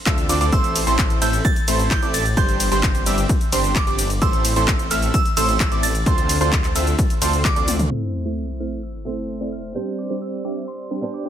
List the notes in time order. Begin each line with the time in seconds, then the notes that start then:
0.06 D2 C4 D4 F4 A4 E5 E6, kick, clap, closed hi-hat, shaker
0.18 closed hi-hat, shaker
0.29 D2 C4 D4 F4 A4 D5 D6, open hi-hat, ride, shaker
0.41 D2 C4 D4 F4 A4 D5 D6, closed hi-hat, shaker
0.52 A1 A3 C4 E4 A4 C5 C6 E6, kick, closed hi-hat, shaker
0.64 closed hi-hat, shaker
0.76 open hi-hat, ride, shaker
0.87 A1 A3 C4 E4 A4 C5 C6, closed hi-hat, shaker
0.99 kick, clap, closed hi-hat, shaker
1.10 closed hi-hat, shaker
1.22 A1 A3 C4 E4 A4 E5 E6 G6, open hi-hat, ride, shaker
1.33 closed hi-hat, shaker
1.45 A6, kick, closed hi-hat, shaker
1.56 closed hi-hat, shaker
1.68 A1 A3 C4 E4 A4 C5 C6, open hi-hat, ride, shaker
1.79 closed hi-hat, shaker
1.91 G6, kick, clap, closed hi-hat, shaker
2.02 A1 A3 C4 E4 A4 D5 D6, closed hi-hat, shaker
2.14 A6, open hi-hat, ride, shaker
2.26 closed hi-hat, shaker
2.37 G1 G3 C4 D4 G4 C5 C6 G6, kick, closed hi-hat, shaker
2.49 closed hi-hat, shaker
2.60 open hi-hat, ride, shaker
2.72 G1 G3 C4 D4 G4 C5 C6, closed hi-hat, shaker
2.83 kick, clap, closed hi-hat, shaker
2.95 closed hi-hat, shaker
3.06 G1 G3 C4 D4 G4 E5 E6, open hi-hat, ride, shaker
3.18 closed hi-hat, shaker
3.29 kick, closed hi-hat, shaker
3.41 closed hi-hat, shaker
3.52 G1 G3 C4 D4 G4 C5 C6, open hi-hat, ride, shaker
3.64 closed hi-hat, shaker
3.75 D6, kick, clap, closed hi-hat, shaker
3.87 G1 G3 C4 D4 G4 D5 D6, closed hi-hat, shaker
3.99 open hi-hat, ride, shaker
4.10 closed hi-hat, shaker
4.22 A1 A3 C4 E4 A4 C5 C6 E6, kick, closed hi-hat, shaker
4.33 closed hi-hat, shaker
4.45 open hi-hat, ride, shaker
4.56 A1 A3 C4 E4 A4 C5 C6, closed hi-hat, shaker
4.68 kick, clap, closed hi-hat, shaker
4.79 closed hi-hat, shaker
4.91 A1 A3 C4 E4 A4 E5 E6 F6, open hi-hat, ride, shaker
5.02 closed hi-hat, shaker
5.14 E6, kick, closed hi-hat, shaker
5.25 closed hi-hat, shaker
5.37 A1 A3 C4 E4 A4 C5 C6 E6, open hi-hat, ride, shaker
5.49 closed hi-hat, shaker
5.60 kick, clap, closed hi-hat, shaker
5.72 A1 A3 C4 E4 A4 D5 D6, closed hi-hat, shaker
5.83 A6, open hi-hat, ride, shaker
5.95 closed hi-hat, shaker
6.06 D2 C4 D4 F4 A4 C5 C6, kick, closed hi-hat, shaker
6.18 closed hi-hat, shaker
6.29 open hi-hat, ride, shaker
6.41 D2 C4 D4 F4 A4 C5 C6, closed hi-hat, shaker
6.52 kick, clap, closed hi-hat, shaker
6.64 clap, closed hi-hat, shaker
6.75 D2 C4 D4 F4 A4 E5 E6, open hi-hat, ride, shaker
6.87 closed hi-hat, shaker
6.99 kick, closed hi-hat, shaker
7.10 closed hi-hat, shaker
7.22 D2 C4 D4 F4 A4 C5 C6, open hi-hat, ride, shaker
7.33 closed hi-hat, shaker
7.45 D6, kick, clap, closed hi-hat, shaker
7.56 D2 C4 D4 F4 A4 D5 D6, closed hi-hat, shaker
7.68 open hi-hat, high tom, ride, shaker
7.79 closed hi-hat, mid tom, shaker
7.90 A3 C4 E4 A4 C5 E6, sub drop
8.25 A3 C4 E4 A4 C5
8.60 A3 C4 E4 A4 E5 F6
8.83 E6
9.05 A3 C4 E4 A4 C5 E6
9.41 A3 C4 E4 A4 D5
9.52 F6
9.74 G3 C4 D4 G4 C5 G6
9.99 D6
10.10 G3 C4 D4 G4 C5
10.22 E6
10.45 G3 C4 D4 G4 E5 D6
10.68 C6
10.91 G3 C4 D4 G4 C5
11.01 G3 C4 D4 C5
11.14 D6
11.25 G3 C4 D4 G4 D5